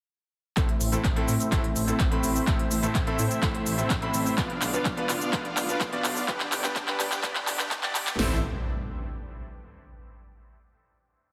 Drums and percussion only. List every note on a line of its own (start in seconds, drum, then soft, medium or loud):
0.57 kick loud
0.57 clap soft
0.57 closed hi-hat medium
0.57 shaker soft
0.69 closed hi-hat soft
0.81 open hi-hat loud
0.81 shaker medium
0.93 closed hi-hat soft
0.93 shaker soft
1.05 kick loud
1.05 clap soft
1.05 closed hi-hat medium
1.05 shaker soft
1.16 closed hi-hat soft
1.28 open hi-hat medium
1.28 shaker medium
1.40 closed hi-hat soft
1.40 shaker soft
1.52 kick loud
1.52 clap medium
1.52 closed hi-hat medium
1.52 shaker soft
1.64 closed hi-hat soft
1.76 open hi-hat loud
1.76 shaker medium
1.88 closed hi-hat soft
1.88 shaker soft
2.00 kick loud
2.00 clap medium
2.00 closed hi-hat medium
2.00 shaker soft
2.12 closed hi-hat soft
2.24 open hi-hat medium
2.24 shaker medium
2.36 shaker soft
2.47 kick loud
2.47 clap medium
2.47 closed hi-hat medium
2.47 shaker soft
2.59 closed hi-hat soft
2.71 open hi-hat loud
2.71 shaker medium
2.83 closed hi-hat soft
2.83 shaker soft
2.95 kick loud
2.95 clap medium
2.95 closed hi-hat medium
2.95 shaker soft
3.07 closed hi-hat soft
3.19 open hi-hat medium
3.19 shaker medium
3.31 closed hi-hat soft
3.31 shaker soft
3.43 kick loud
3.43 clap medium
3.43 closed hi-hat medium
3.43 shaker soft
3.55 closed hi-hat soft
3.66 open hi-hat loud
3.66 shaker medium
3.78 closed hi-hat soft
3.78 shaker soft
3.90 kick loud
3.90 clap medium
3.90 closed hi-hat medium
3.90 shaker soft
4.02 closed hi-hat soft
4.14 open hi-hat loud
4.14 shaker medium
4.26 shaker soft
4.38 kick loud
4.38 clap medium
4.38 closed hi-hat medium
4.38 shaker soft
4.50 closed hi-hat soft
4.62 clap medium
4.62 open hi-hat loud
4.62 shaker medium
4.74 closed hi-hat soft
4.74 shaker soft
4.85 kick loud
4.85 clap medium
4.85 closed hi-hat medium
4.85 shaker soft
4.97 closed hi-hat soft
5.09 clap medium
5.09 open hi-hat loud
5.09 shaker medium
5.21 closed hi-hat soft
5.21 shaker soft
5.33 kick loud
5.33 clap medium
5.33 closed hi-hat medium
5.33 shaker soft
5.45 closed hi-hat soft
5.57 clap medium
5.57 open hi-hat loud
5.57 shaker medium
5.69 closed hi-hat soft
5.69 shaker soft
5.81 kick loud
5.81 clap medium
5.81 closed hi-hat medium
5.81 shaker soft
5.93 closed hi-hat soft
6.04 clap medium
6.04 open hi-hat loud
6.04 shaker medium
6.17 shaker soft
6.28 kick loud
6.28 clap medium
6.28 closed hi-hat medium
6.28 shaker soft
6.40 clap medium
6.40 closed hi-hat soft
6.52 clap medium
6.52 open hi-hat loud
6.52 shaker medium
6.64 clap medium
6.64 closed hi-hat soft
6.64 shaker soft
6.76 kick loud
6.76 clap loud
6.76 closed hi-hat medium
6.76 shaker soft
6.88 clap medium
6.88 closed hi-hat soft
7.00 clap loud
7.00 open hi-hat medium
7.00 shaker medium
7.12 clap medium
7.12 closed hi-hat soft
7.12 shaker soft
7.24 kick loud
7.24 clap loud
7.24 closed hi-hat medium
7.24 shaker soft
7.35 clap medium
7.35 closed hi-hat soft
7.47 clap loud
7.47 open hi-hat loud
7.47 shaker medium
7.59 clap medium
7.59 closed hi-hat soft
7.59 shaker soft
7.71 kick loud
7.71 clap loud
7.71 closed hi-hat medium
7.71 shaker soft
7.83 clap loud
7.83 closed hi-hat soft
7.95 clap loud
7.95 open hi-hat loud
7.95 shaker medium
8.07 clap loud
8.07 shaker soft
8.19 snare loud
8.19 open hi-hat medium